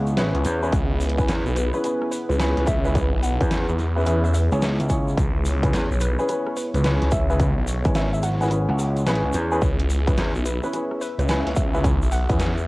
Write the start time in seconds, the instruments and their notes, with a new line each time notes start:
Already playing: slap bass C#2, analog synth pad B3 E4 G#4 C#5, synth pluck F#5
0.07 closed hi-hat, shaker
0.17 grand piano C#4 E4 G#4 B4, snare, closed hi-hat, shaker
0.35 detuned saw bass C#2, closed hi-hat
0.45 slap bass E2, closed hi-hat, shaker
0.63 grand piano C#4 E4 G#4 B4, shaker
0.73 detuned saw bass C#2, analog synth pad B4, kick, closed hi-hat, shaker
1.01 open hi-hat, shaker
1.10 closed hi-hat
1.18 grand piano C#4 E4 G#4 B4, kick, shaker
1.29 slap bass E2, snare, closed hi-hat, shaker
1.46 detuned saw bass B1, shaker
1.56 synth pluck B4, closed hi-hat, shaker
1.74 grand piano C#4 E4 G#4 B4, synth pluck B4, shaker
1.84 grand piano C#4 E4 G#4 B4, closed hi-hat, shaker
2.02 cross-stick
2.12 synth pluck B4, open hi-hat, shaker
2.29 detuned saw bass C#2, synth pluck B4, closed hi-hat, shaker
2.35 closed hi-hat
2.40 grand piano C#4 E4 G#4 B4, snare, closed hi-hat, shaker
2.49 closed hi-hat
2.57 detuned saw bass C#2, snare, closed hi-hat
2.64 detuned saw bass C#2, synth pluck E5, kick, snare, closed hi-hat, shaker
2.73 snare
2.77 snare
2.85 grand piano C#4 E4 G#4 B4, synth pluck E5, shaker
2.95 kick, closed hi-hat, shaker
3.13 detuned saw bass B1
3.23 synth pluck F#5, open hi-hat, shaker
3.41 slap bass E2, grand piano C#4 E4 G#4 B4, kick, closed hi-hat, shaker
3.51 snare, closed hi-hat, shaker
3.68 detuned saw bass E2, shaker
3.79 cross-stick, snare, closed hi-hat, shaker
3.96 grand piano C#4 E4 G#4 B4, synth pluck E5, shaker
4.06 detuned saw bass E2, grand piano C#4 E4 G#4 B4, synth pluck E5, closed hi-hat, shaker
4.24 synth pluck E5, shaker
4.33 synth pluck E5, cross-stick, open hi-hat, shaker
4.52 slap bass C#2, grand piano C#4 E4 G#4 C#5, closed hi-hat, shaker
4.62 snare, shaker
4.80 slap bass C#2, closed hi-hat, shaker
4.89 grand piano C#4 E4 G#4 C#5, kick, closed hi-hat, shaker
5.08 shaker
5.17 detuned saw bass C#2, analog synth pad C#5, kick, closed hi-hat, shaker
5.45 open hi-hat, shaker
5.63 grand piano C#4 E4 G#4 B4, kick, closed hi-hat, shaker
5.73 slap bass E2, snare, closed hi-hat, shaker
5.90 detuned saw bass B1, shaker
6.00 synth pluck B4, closed hi-hat, shaker
6.18 grand piano C#4 E4 G#4 B4, synth pluck B4, shaker
6.28 grand piano C#4 E4 G#4 B4, closed hi-hat, shaker
6.46 cross-stick
6.56 synth pluck B4, open hi-hat, shaker
6.74 detuned saw bass C#2, synth pluck B4, closed hi-hat, shaker
6.84 grand piano C#4 E4 G#4 B4, snare, closed hi-hat, shaker
7.02 detuned saw bass C#2, snare, closed hi-hat
7.11 detuned saw bass C#2, synth pluck E5, kick, closed hi-hat, shaker
7.30 grand piano C#4 E4 G#4 B4, synth pluck E5, shaker
7.40 kick, closed hi-hat, shaker
7.57 detuned saw bass B1
7.67 open hi-hat, shaker
7.85 slap bass G#1, grand piano C#4 E4 G#4 B4, kick, closed hi-hat, shaker
7.95 synth pluck E5, snare, closed hi-hat, shaker
8.13 synth pluck E5, shaker
8.23 synth pluck F#5, cross-stick, snare, closed hi-hat, shaker
8.27 snare
8.32 snare
8.36 snare
8.41 grand piano C#4 E4 G#4 B4, synth pluck F#5, snare, shaker
8.43 snare
8.46 snare
8.48 grand piano C#4 E4 G#4 B4, snare, closed hi-hat, shaker
8.69 slap bass C#2, synth pluck F#5
8.79 cross-stick, open hi-hat, shaker
8.97 closed hi-hat, shaker
9.06 grand piano C#4 E4 G#4 B4, snare, closed hi-hat, shaker
9.15 closed hi-hat
9.24 detuned saw bass C#2
9.33 slap bass E2, closed hi-hat, shaker
9.52 grand piano C#4 E4 G#4 B4, shaker
9.62 detuned saw bass C#2, analog synth pad E5, kick, shaker
9.80 closed hi-hat
9.90 open hi-hat, shaker
10.07 grand piano C#4 E4 G#4 B4, kick, closed hi-hat, shaker
10.17 slap bass E2, snare, closed hi-hat, shaker
10.35 detuned saw bass B1, shaker
10.45 synth pluck B4, closed hi-hat, shaker
10.63 grand piano C#4 E4 G#4 B4, synth pluck B4, shaker
10.73 grand piano C#4 E4 G#4 B4, closed hi-hat, shaker
10.91 cross-stick
11.01 synth pluck B4, open hi-hat, shaker
11.18 detuned saw bass C#2, synth pluck B4, closed hi-hat, shaker
11.28 grand piano C#4 E4 G#4 B4, snare, closed hi-hat, shaker
11.46 detuned saw bass C#2, snare, closed hi-hat
11.56 detuned saw bass C#2, synth pluck E5, kick, closed hi-hat, shaker
11.74 grand piano C#4 E4 G#4 B4, synth pluck E5, shaker
11.84 kick, closed hi-hat, shaker
12.02 detuned saw bass B1, shaker
12.12 synth pluck F#5, open hi-hat, shaker
12.29 detuned saw bass E2, grand piano C#4 E4 G#4 B4, kick, closed hi-hat, shaker
12.40 snare, closed hi-hat, shaker
12.58 shaker